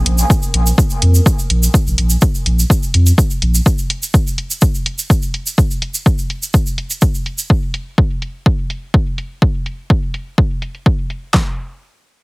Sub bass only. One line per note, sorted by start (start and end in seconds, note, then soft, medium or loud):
0.06 0.24 A#1 medium
0.54 0.72 A#1 medium
1.02 1.20 F2 medium
1.50 1.68 A#1 loud
1.86 1.95 A#1 loud
1.98 2.16 A#1 medium
2.46 2.64 A#1 medium
2.94 3.12 F2 medium
3.42 3.60 A#1 loud